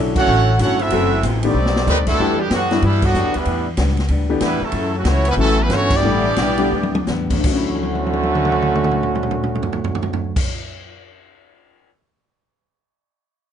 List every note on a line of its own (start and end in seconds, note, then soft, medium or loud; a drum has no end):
0.00 0.26 B1 medium
0.00 0.17 D3 medium
0.00 0.18 F#3 medium
0.00 0.26 F#3 medium
0.00 0.18 C#4 medium
0.00 0.26 C#4 medium
0.00 0.26 D4 medium
0.00 0.18 E4 medium
0.00 0.26 E4 medium
0.00 0.27 A4 medium
0.16 0.57 A3 medium
0.16 0.57 C#4 loud
0.16 0.58 E4 medium
0.16 0.57 F#4 loud
0.16 0.58 A4 loud
0.16 0.58 C#5 loud
0.16 0.58 F#5 loud
0.16 kick loud
0.16 crash medium
0.27 0.58 A1 loud
0.27 0.49 D3 soft
0.27 0.49 F#3 soft
0.27 0.50 C#4 medium
0.27 0.50 E4 medium
0.59 0.90 G1 loud
0.59 0.81 D3 medium
0.59 0.81 F#3 medium
0.59 0.78 A3 medium
0.59 0.81 C#4 medium
0.59 0.79 C#4 medium
0.59 0.81 E4 medium
0.59 0.79 E4 medium
0.59 0.79 F#4 medium
0.59 0.79 A4 medium
0.59 0.79 C#5 medium
0.59 0.79 F#5 loud
0.59 kick soft
0.59 hi-hat pedal medium
0.59 ride medium
0.79 1.23 A3 medium
0.79 1.23 C4 medium
0.79 1.24 C4 medium
0.79 1.23 E4 medium
0.79 1.24 F#4 medium
0.79 1.24 A4 medium
0.79 1.24 E5 loud
0.79 ride medium
0.90 1.22 F#1 medium
0.90 1.12 F#2 soft
0.90 1.55 E3 loud
0.90 1.13 E3 medium
0.90 1.09 F#3 medium
0.90 1.55 A3 medium
0.90 1.09 A3 medium
0.90 1.13 A3 medium
0.90 1.55 C4 medium
0.90 1.10 C4 medium
0.90 1.14 C4 medium
0.90 1.10 E4 medium
0.90 1.55 F#4 loud
0.90 1.10 A4 medium
0.90 kick soft
0.90 ride medium
1.23 1.54 A1 medium
1.23 1.44 F#2 medium
1.23 1.45 E3 medium
1.23 1.45 A3 medium
1.23 1.45 C4 medium
1.23 kick soft
1.23 hi-hat pedal medium
1.23 ride medium
1.43 1.54 D#3 medium
1.43 1.85 G3 medium
1.43 1.54 A3 medium
1.43 2.03 A3 medium
1.43 1.88 A3 medium
1.43 1.55 B3 medium
1.43 2.03 C4 medium
1.43 1.55 D4 medium
1.43 1.87 D#4 medium
1.43 1.55 G4 medium
1.43 1.88 G4 medium
1.43 2.04 D5 medium
1.43 ride medium
1.54 1.85 B1 medium
1.54 1.76 B2 soft
1.54 1.77 G3 soft
1.54 1.77 A3 medium
1.54 1.78 D#4 medium
1.66 snare medium
1.76 snare medium
1.87 2.18 D2 medium
1.87 2.08 B2 medium
1.87 1.96 D#3 medium
1.87 1.96 G3 medium
1.87 2.08 G3 medium
1.87 2.09 A3 medium
1.87 1.97 A3 medium
1.87 1.96 B3 loud
1.87 1.97 D#4 medium
1.87 2.09 D#4 medium
1.87 1.97 G4 medium
1.87 1.97 B4 loud
1.87 floor tom medium
1.87 hi-hat pedal medium
2.07 2.37 B2 loud
2.07 2.36 D3 loud
2.07 2.37 G3 medium
2.07 2.37 A3 loud
2.07 2.37 D4 medium
2.07 2.37 E4 medium
2.07 2.37 A4 loud
2.07 kick medium
2.07 crash medium
2.19 2.50 E2 medium
2.19 2.40 E3 medium
2.19 2.37 E3 medium
2.19 2.37 G3 medium
2.19 2.40 B3 medium
2.19 2.37 B3 medium
2.19 2.37 D4 medium
2.19 2.41 D4 medium
2.19 2.38 G4 medium
2.19 2.41 G4 medium
2.38 2.51 B2 medium
2.38 2.51 D3 medium
2.38 2.50 G3 medium
2.38 2.52 B3 medium
2.38 2.52 D4 medium
2.38 2.52 G4 loud
2.50 2.81 F#2 medium
2.50 2.81 B2 medium
2.50 2.81 D3 medium
2.50 2.72 E3 medium
2.50 2.81 F#3 medium
2.50 2.72 B3 medium
2.50 2.82 B3 medium
2.50 2.73 D4 medium
2.50 2.82 D4 medium
2.50 2.82 F#4 loud
2.50 2.73 G4 medium
2.50 kick soft
2.50 snare medium
2.50 hi-hat pedal medium
2.50 ride medium
2.71 2.82 E3 medium
2.71 2.82 G3 medium
2.71 2.82 B3 medium
2.71 2.82 D4 medium
2.71 2.82 E4 medium
2.71 snare medium
2.71 ride medium
2.82 3.13 G2 loud
2.82 3.03 G2 medium
2.82 3.03 B2 medium
2.82 3.04 E3 medium
2.82 3.03 E3 medium
2.82 3.04 G3 medium
2.82 3.04 B3 soft
2.82 3.04 B3 medium
2.82 3.04 D4 medium
2.82 3.03 D4 medium
2.82 3.04 E4 medium
2.82 3.05 G4 medium
2.82 kick soft
2.82 ride medium
3.02 3.35 B2 medium
3.02 3.35 D3 medium
3.02 3.35 F#3 medium
3.02 3.35 B3 medium
3.02 3.35 D4 medium
3.02 3.35 F#4 loud
3.02 kick loud
3.02 crash medium
3.14 3.25 F#2 medium
3.14 3.36 E3 medium
3.14 3.36 B3 medium
3.14 3.36 D4 medium
3.14 3.37 G4 medium
3.14 hi-hat pedal medium
3.25 3.35 E2 medium
3.34 3.45 D2 medium
3.34 3.67 E3 medium
3.34 3.67 G3 medium
3.34 3.68 G3 medium
3.34 3.67 B3 medium
3.34 3.67 D4 medium
3.34 3.67 E4 medium
3.34 3.67 B4 medium
3.34 ride medium
3.45 3.77 E2 medium
3.45 3.67 A2 medium
3.45 3.68 G3 medium
3.45 3.68 B3 medium
3.45 3.68 D4 medium
3.45 kick soft
3.45 ride medium
3.77 4.08 C#2 medium
3.77 3.99 A2 medium
3.77 3.99 G3 medium
3.77 4.00 B3 medium
3.77 4.00 D4 medium
3.77 kick soft
3.77 snare medium
3.77 hi-hat pedal medium
3.77 ride medium
3.89 snare soft
3.97 snare soft
3.97 ride soft
4.08 4.40 D2 loud
4.08 4.31 A2 medium
4.08 4.31 G3 medium
4.08 4.32 B3 medium
4.08 4.32 D4 medium
4.08 kick soft
4.08 ride medium
4.29 4.40 E3 medium
4.29 4.40 A3 medium
4.29 4.41 B3 medium
4.29 4.41 D4 medium
4.29 4.41 G4 medium
4.40 4.60 E2 loud
4.40 4.62 A2 medium
4.40 4.60 E3 medium
4.40 4.63 G3 medium
4.40 4.60 G3 medium
4.40 4.61 G3 medium
4.40 4.63 B3 medium
4.40 4.61 B3 medium
4.40 4.63 D4 medium
4.40 4.61 D4 medium
4.40 4.61 E4 medium
4.40 4.61 B4 medium
4.40 kick soft
4.40 snare medium
4.40 hi-hat pedal medium
4.40 ride medium
4.61 4.94 C#3 medium
4.61 4.94 E3 medium
4.61 4.94 F#3 medium
4.61 4.94 A3 medium
4.61 4.94 C#4 medium
4.61 4.94 E4 medium
4.61 4.94 A4 medium
4.61 muted upright bass stroke soft
4.72 4.94 F#2 medium
4.72 5.04 F#2 medium
4.72 4.94 E3 medium
4.72 4.95 A3 medium
4.72 4.95 C#4 medium
4.72 kick soft
4.72 ride medium
4.95 5.05 A2 medium
4.95 5.05 C#3 medium
4.95 5.05 F#3 medium
4.95 5.06 A3 medium
4.95 5.06 C#4 medium
4.95 5.06 F#4 medium
5.04 5.36 C#2 loud
5.04 5.26 F#2 medium
5.04 5.26 E3 medium
5.04 5.27 E3 medium
5.04 5.27 A3 medium
5.04 5.28 A3 medium
5.04 5.27 C#4 medium
5.04 5.28 E4 loud
5.04 5.28 C#5 medium
5.04 kick soft
5.04 snare medium
5.04 hi-hat pedal medium
5.04 ride medium
5.08 5.28 F#4 medium
5.25 5.32 B3 medium
5.25 ride medium
5.31 5.35 G3 medium
5.31 5.35 C#4 medium
5.31 5.35 E4 medium
5.31 5.35 B4 medium
5.37 5.69 A1 medium
5.37 5.59 F#2 medium
5.37 5.58 C#3 medium
5.37 5.55 E3 medium
5.37 5.58 E3 loud
5.37 5.59 E3 soft
5.37 5.56 F#3 medium
5.37 5.56 A3 medium
5.37 5.58 A3 loud
5.37 5.60 A3 medium
5.37 5.56 C#4 medium
5.37 5.60 C#4 medium
5.37 5.59 C#4 medium
5.37 5.56 F#4 medium
5.37 kick soft
5.41 5.59 F#3 loud
5.41 5.60 E4 medium
5.41 5.59 A4 loud
5.62 5.72 G3 medium
5.62 5.72 B3 medium
5.62 5.71 C#4 medium
5.62 5.72 E4 medium
5.62 5.72 B4 loud
5.69 6.02 G1 loud
5.69 5.92 F#2 medium
5.69 5.92 E3 medium
5.69 5.91 E3 loud
5.69 5.93 A3 medium
5.69 5.92 A3 loud
5.69 5.92 C#4 medium
5.69 5.93 C#4 medium
5.69 kick soft
5.69 snare medium
5.69 hi-hat pedal medium
5.69 ride medium
5.74 5.93 A3 medium
5.74 5.93 E4 medium
5.74 5.93 F#4 loud
5.74 5.93 C#5 loud
5.90 7.08 E3 loud
5.90 7.09 G3 loud
5.90 7.09 D4 medium
5.90 kick loud
5.90 crash medium
5.96 7.10 B3 medium
5.96 7.10 E4 medium
5.96 7.10 G4 medium
5.96 7.10 D5 loud
6.02 6.36 A1 medium
6.02 6.25 A2 medium
6.02 6.22 D3 medium
6.02 6.22 G3 medium
6.02 6.26 G3 medium
6.02 6.23 A3 medium
6.02 6.23 B3 medium
6.02 6.26 B3 medium
6.02 6.27 D4 medium
6.02 6.23 E4 medium
6.36 6.71 B1 medium
6.36 6.61 A2 medium
6.36 6.61 G3 medium
6.36 6.61 B3 medium
6.36 6.61 D4 medium
6.36 kick soft
6.36 snare medium
6.36 hi-hat pedal medium
6.36 ride medium
6.58 6.70 D3 medium
6.58 6.70 G3 medium
6.58 6.71 A3 medium
6.58 6.71 B3 medium
6.58 6.71 G4 medium
6.58 ride medium
6.71 7.06 D2 medium
6.71 6.96 A2 medium
6.71 6.96 G3 medium
6.71 6.97 B3 medium
6.71 6.97 D4 medium
6.83 high tom medium
6.95 high tom loud
7.07 7.43 E2 medium
7.07 7.32 A2 medium
7.07 7.33 G3 medium
7.07 7.33 B3 medium
7.07 7.33 D4 medium
7.07 snare medium
7.07 hi-hat pedal medium
7.30 10.37 D2 medium
7.30 kick medium
7.30 crash medium
7.39 10.40 D3 medium
7.39 10.90 D3 medium
7.44 10.39 D2 medium
7.44 10.40 D3 loud
7.44 10.43 F#3 medium
7.44 10.96 F#3 medium
7.44 10.39 A3 loud
7.44 10.40 C#4 loud
7.44 10.39 F#4 loud
7.44 kick loud
7.44 crash loud
7.51 10.46 C#4 medium
7.51 10.99 C#4 medium
7.56 10.99 E4 medium
7.56 10.50 E4 medium
7.68 high tom soft
7.75 high tom medium
7.83 high tom soft
7.95 high tom medium
8.06 high tom medium
8.13 high tom medium
8.23 high tom medium
8.35 mid tom medium
8.45 mid tom medium
8.52 mid tom medium
8.62 mid tom medium
8.75 mid tom medium
8.84 mid tom medium
8.91 mid tom medium
9.03 mid tom medium
9.15 mid tom medium
9.23 mid tom medium
9.31 mid tom medium
9.43 mid tom medium
9.55 mid tom medium
9.63 floor tom medium
9.73 floor tom medium
9.84 floor tom medium
9.95 floor tom loud
10.03 floor tom loud
10.13 floor tom medium
10.36 kick loud
10.36 crash loud